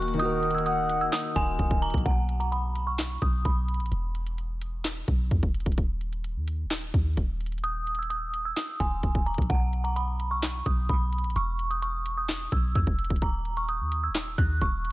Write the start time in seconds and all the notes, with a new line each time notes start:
Already playing: D#1 D#3 A#3 D#4 F#4 A#4 C#6
0.02 closed hi-hat
0.08 closed hi-hat
0.14 D#3, closed hi-hat
0.18 D#4 F#4 D#6, closed hi-hat
0.25 A#4
0.43 closed hi-hat
0.51 E6, closed hi-hat
0.58 closed hi-hat
0.66 F#5 D#6, closed hi-hat
0.90 closed hi-hat
1.01 E6
1.12 D#6, snare, clap, closed hi-hat
1.36 D#1 G#5, kick, closed hi-hat
1.59 D#1, kick, closed hi-hat
1.71 D#1, kick
1.82 A#5, closed hi-hat
1.90 A#1, kick, closed hi-hat
1.98 closed hi-hat
2.06 B1 F#5, kick, closed hi-hat
2.29 closed hi-hat
2.40 A#5, closed hi-hat
2.52 B5, closed hi-hat
2.76 closed hi-hat
2.87 C#6
2.99 snare, clap, closed hi-hat
3.22 B1 D#6, kick, closed hi-hat
3.45 B1 B5, kick, closed hi-hat
3.68 closed hi-hat
3.74 closed hi-hat
3.80 A#1, closed hi-hat
3.86 closed hi-hat
3.92 E1, closed hi-hat
4.15 closed hi-hat
4.27 closed hi-hat
4.38 closed hi-hat
4.62 closed hi-hat
4.85 snare, clap, closed hi-hat
5.08 B1, kick, closed hi-hat
5.31 E2, kick, closed hi-hat
5.43 E1, kick
5.54 closed hi-hat
5.60 closed hi-hat
5.66 D#1, kick, closed hi-hat
5.72 closed hi-hat
5.78 D#1, kick, closed hi-hat
6.01 closed hi-hat
6.13 closed hi-hat
6.24 closed hi-hat
6.36 D#2
6.48 closed hi-hat
6.65 D#1
6.71 snare, clap, closed hi-hat
6.94 D#2, kick, closed hi-hat
7.17 D#1, kick, closed hi-hat
7.41 closed hi-hat
7.46 closed hi-hat
7.52 closed hi-hat
7.58 closed hi-hat
7.64 D#6, closed hi-hat
7.87 closed hi-hat
7.95 E6, closed hi-hat
8.03 closed hi-hat
8.10 D#6, closed hi-hat
8.34 closed hi-hat
8.45 E6
8.56 D#6, snare, clap, closed hi-hat
8.80 D#1 G#5, kick, closed hi-hat
9.03 D#1, kick, closed hi-hat
9.15 D#1, kick
9.26 A#5, closed hi-hat
9.34 A#1, kick, closed hi-hat
9.42 closed hi-hat
9.50 B1 F#5, kick, closed hi-hat
9.73 closed hi-hat
9.84 A#5, closed hi-hat
9.96 B5, closed hi-hat
10.20 closed hi-hat
10.31 C#6
10.43 snare, clap, closed hi-hat
10.66 B1 D#6, kick, closed hi-hat
10.89 B1 B5, kick, closed hi-hat
11.13 closed hi-hat
11.18 closed hi-hat
11.24 A#1, closed hi-hat
11.30 closed hi-hat
11.36 E1 C#6, closed hi-hat
11.59 closed hi-hat
11.71 D#6, closed hi-hat
11.82 C#6, closed hi-hat
12.06 closed hi-hat
12.18 D#6
12.29 snare, clap, closed hi-hat
12.52 B1 E6, kick, closed hi-hat
12.75 E2 E6, kick, closed hi-hat
12.87 E1, kick
12.99 closed hi-hat
13.04 closed hi-hat
13.10 D#1, kick, closed hi-hat
13.16 closed hi-hat
13.22 D#1 A#5, kick, closed hi-hat
13.45 closed hi-hat
13.57 C#6, closed hi-hat
13.69 D#6, closed hi-hat
13.80 D#2
13.92 closed hi-hat
14.04 E6
14.09 D#1
14.15 snare, clap, closed hi-hat
14.38 D#2 F#6, kick, closed hi-hat
14.61 D#1 C#6, kick, closed hi-hat
14.85 closed hi-hat